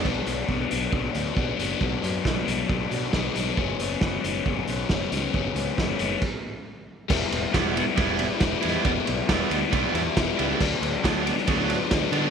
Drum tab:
CC |x---------------|----------------|----------------|--------x-------|
RD |----------------|----------------|----------------|----------------|
HH |--x---x---x---x-|--x---x---x---x-|--x---x---x---x-|--x---x---------|
SD |----------------|----o-------o---|----o-------o---|----o-----------|
BD |o---o---o---o---|o---o---o---o---|o---o---o---o---|o---o---o-------|

CC |x---------------|----------------|x---------------|
RD |--x-x-x-x-x-x-x-|x-x-x-x-x-x-x-x-|--x-x-x-x-x-x-x-|
HH |----------------|----------------|----------------|
SD |----o-------o---|----o-------o---|----o--o----o---|
BD |o---o---o---o---|o---o---o---o---|o---o---o---o---|